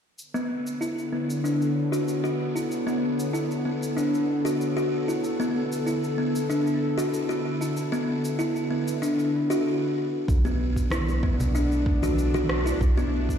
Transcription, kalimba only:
0.34 B3
0.81 E4
1.12 B3
1.44 D4
1.92 F#4
2.24 F#4
2.55 E4
2.87 B3
3.33 E4
3.65 B3
3.97 D4
4.45 F#4
4.77 F#4
5.08 E4
5.40 B3
5.87 E4
6.18 B3
6.50 D4
6.98 F#4
7.29 F#4
7.61 E4
7.92 B3
8.39 E4
8.71 B3
9.02 D4
9.50 F#4
10.45 B3
10.91 E4
11.23 B3
11.55 D4
12.03 F#4
12.34 F#4
12.66 E4
12.98 B3

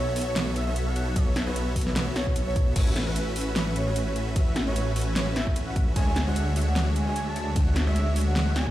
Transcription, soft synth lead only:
Already playing: C#5
0.27 C#5
0.56 E5
0.87 F#5
1.16 C#5
1.47 B4
1.87 B4
2.16 C#5
2.47 C#5
2.76 C#5
3.07 B4
3.47 B4
3.76 C#5
4.07 C#5
4.36 E5
4.67 C#5
5.07 C#5
5.36 E5
5.67 F#5
5.96 G#5
6.27 F#5
6.67 F#5
6.96 G#5
7.27 A5
7.56 F#5
7.87 E5
8.27 F#5
8.56 G#5

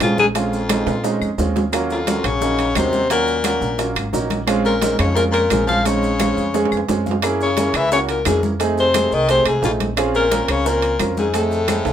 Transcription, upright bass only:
0.00 A#1
0.86 A#2
1.21 F2
1.38 D#2
2.24 A#1
2.76 D#2
3.61 A#1
3.96 G#1
4.13 A#1
4.99 F2
5.50 A#1
6.37 F2
6.71 F2
6.88 F#2
7.74 C#2
8.26 F2
9.11 C2
9.45 C2
9.62 A#1
10.49 C#2
11.00 F2
11.85 C2

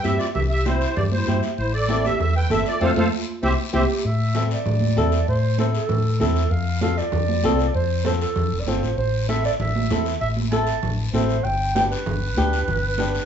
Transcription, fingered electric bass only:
0.05 G2
0.35 C2
0.97 G2
1.27 G2
1.58 A1
2.20 E2
2.50 G1
2.81 F2
2.96 F2
3.43 C2
3.74 C2
4.05 A2
4.66 A2
4.97 E2
5.28 A2
5.90 A2
6.21 E2
6.51 F2
7.13 F2
7.44 C2
7.75 F2
8.36 F2
8.52 F1
8.67 G1
8.82 A1
8.98 A1
9.59 A1
9.91 E2
10.21 A1
10.83 A1
11.14 A1
11.45 G1
12.06 G1
12.37 D2
12.68 G1

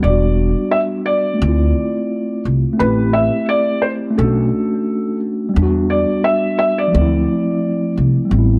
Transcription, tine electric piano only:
Already playing: G3
0.01 B3
0.05 D4
0.10 F#4
1.34 A3
1.39 C4
1.43 E4
1.48 F4
2.73 A3
2.77 C4
2.82 E4
2.87 G4
4.11 A3
4.15 C#4
4.20 D4
4.24 F#4
5.49 G3
5.54 B3
5.58 D4
5.63 F#4
6.88 F3
6.92 A3
6.97 C4
7.01 E4
8.25 G3
8.30 B3
8.35 C4
8.39 E4

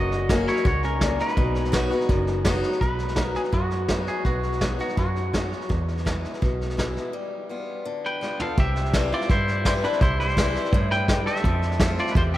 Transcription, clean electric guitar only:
Already playing: F#4 D#5
0.48 E4 C#5
0.67 F#4 C#5
0.84 C#4 A#4
1.20 D#4 B4
2.81 B4
3.22 A#4
3.36 G#4
3.54 F#4
4.08 G#4
4.26 F#4
4.81 F#4
4.99 F#4
8.06 B4 G5
8.41 A4 F5
8.60 G4 E5
9.14 F4 D5
9.31 E4 C5
9.67 E4 C5
9.84 D4 B4
10.02 E4 C5
10.20 E4 C5
10.91 B4 G5
11.26 A4 E5
12.00 F4 D5
12.11 B4
12.17 F4 C5
12.34 G4

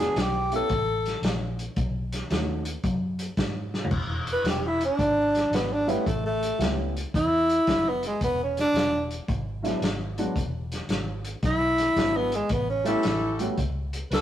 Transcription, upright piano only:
0.00 B3 D4 F#4 G#4
0.52 B3 C#4 E4 G4
2.30 A3 C#4 D#4 F#4
5.87 G3 A3 B3 C#4 E4
6.58 G3 A3 B3 C#4 E4
9.62 F#3 G#3 B3 D4 E4
10.18 F#3 G#3 B3 D4 F#4
11.96 F#3 G#3 B3 D4 E4
12.84 G3 A3 B3 C#4 E4
13.39 G3 A3 B3 C#4 F#4

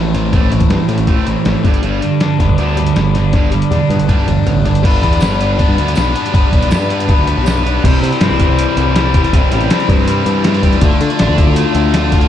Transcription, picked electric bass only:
Already playing: A1
0.70 G2
0.89 A2
0.99 A1
1.26 A1
1.46 A1
1.64 G1
1.83 G1
2.40 G1
2.58 D2
2.96 G1
3.71 E2
3.90 G2
3.99 G1
4.27 G1
4.46 A1
4.65 G1
4.84 G1
5.03 E2
5.22 G1
5.69 G2
5.78 D2
5.97 B1
6.34 G1
6.53 B1
6.71 G2
7.19 D2
7.37 B1
7.84 C2
8.03 C3
8.21 G2
8.30 C2
8.49 C2
8.77 C2
9.33 C2
9.52 A1
9.89 G2
10.26 G2
10.82 D2
11.01 D3
11.20 A1
11.29 D2
11.47 D2
11.75 D2

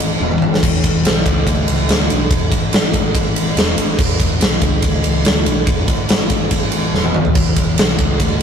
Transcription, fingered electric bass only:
Already playing: G#1
0.20 E1
0.41 G#1
0.63 E1
0.84 E1
1.04 B1
1.26 C#2
1.47 D2
1.68 C#2
1.89 D2
2.10 B1
2.30 E1
2.52 G#1
2.73 G#1
3.15 G#1
3.56 E1
3.77 G#1
3.99 E1
4.19 E1
4.41 B1
4.61 C#2
4.83 D2
5.04 C#2
5.25 D2
5.45 B1
5.67 E1
5.88 G#1
6.09 G#1
6.51 G#1
6.94 E1
7.16 G#1
7.35 E1
7.56 E1
7.79 B1
7.99 C#2
8.20 D2

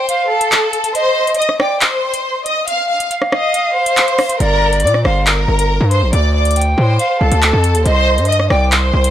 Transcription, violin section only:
Already playing: C5 C6
0.30 A4 A5
0.95 C5 C6
1.38 D#5 D#6
1.60 D5 D6
1.81 C5 C6
2.46 D#5 D#6
2.68 F5 F6
2.89 F5 F6
3.33 D#5 D#6
3.75 C5 C6
4.40 A#4 A#5
4.84 D5 D6
5.05 C5 C6
5.27 A#4 A#5
5.91 C5 C6
6.13 D5 D6
6.35 D5 D6
6.77 C5 C6
7.20 A4 A5
7.86 C5 C6
8.28 D#5 D#6
8.51 D5 D6
8.72 C5 C6

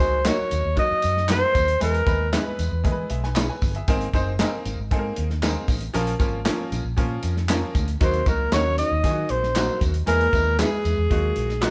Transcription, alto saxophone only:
Already playing: C5
0.27 C#5
0.79 D#5
1.31 C5
1.83 A#4
2.35 B4
8.03 C5
8.28 A#4
8.53 C#5
8.78 D#5
9.30 C5
10.07 A#4
10.59 G#4

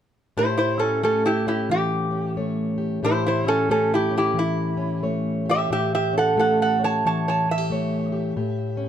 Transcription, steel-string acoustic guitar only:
0.37 A2 G4
0.78 C#4
1.03 A3 G4
1.47 C#4
1.70 E3
2.11 C#4
2.37 A3 C#5
2.78 G4
3.03 A2 G4
3.44 C#4
3.69 A3 G4
4.11 C#4
4.34 E3
4.77 C#4
5.03 A3 C#5
5.45 G4
5.70 A2 G4
6.13 C#4
6.37 A3 G4
6.80 C#5
7.05 E3
7.46 E4
7.58 G4
7.70 A3 C#5
8.12 G4
8.36 A2 G4
8.77 C#4

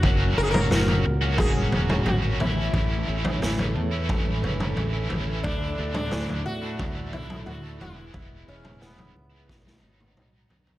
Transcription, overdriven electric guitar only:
0.03 F#3 A#3 C#4 F#4
0.36 F#3 A#3 C#4 F#4
0.70 F#3 A#3 C#4 F#4
0.88 A#3 C#4 F#4
1.05 muted overdriven electric guitar stroke
1.21 A#3 C#4 F#4
1.37 F#3 A#3 C#4 F#4
1.54 A#3 C#4 F#4
1.70 F#3 A#3 C#4 F#4
2.22 A#3 C#4 F#4
2.38 A2 E3 A3 C#4 E4
2.56 A3 C#4 E4
2.73 A2 E3 A3 C#4 E4
3.07 E3 A3 C#4 E4
3.41 A2 E3 A3 C#4 E4
3.58 A3 C#4 E4
3.75 muted overdriven electric guitar stroke
3.91 A3 C#4 E4
4.09 A2 E3 A3 C#4 E4
4.25 A3 C#4 E4
4.42 E3 A3 C#4 E4
4.93 A3 C#4 E4
5.09 E3 A3 C#4 E4
5.27 A3 C#4 E4
5.45 D3 A3 D4 E4
5.78 D3 A3 D4 E4
6.12 D3 A3 D4 E4
6.28 A3 D4 E4
6.45 muted overdriven electric guitar stroke
6.62 A3 D4 E4
6.78 D3 A3 D4 E4
6.95 A3 D4 E4
7.12 D3 A3 D4 E4
7.62 A3 D4 E4
7.79 E3 G#3 B3 E4
7.96 G#3 B3 E4
8.13 E3 G#3 B3 E4
8.46 E3 G#3 B3 E4
8.80 E3 G#3 B3 E4
8.98 G#3 B3 E4
9.15 muted overdriven electric guitar stroke
9.31 G#3 B3 E4
9.47 B2 D#3 F#3 B3 D#4
9.65 F#3 B3 D#4
9.81 D#3 F#3 B3 D#4
10.32 F#3 B3 D#4
10.49 D#3 F#3 B3 D#4
10.65 F#3 B3 D#4

